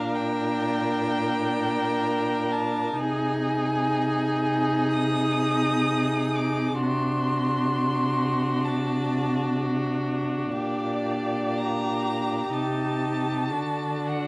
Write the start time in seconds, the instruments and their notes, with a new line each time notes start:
Already playing: cello A#2, viola D4, violin A#4 F5
0.14 violin G5
2.51 violin A5
2.98 cello C3, viola D#4, violin G#4 G#5
4.93 violin D#6
6.36 violin D6
6.80 cello C3, viola D4, violin F#4 C6
8.65 violin A5
10.52 cello A#2, violin G4 D5
11.58 violin A#5
12.53 cello C3, viola D#4, violin A5
13.51 cello D3, viola D4, violin F#4
14.06 violin F#5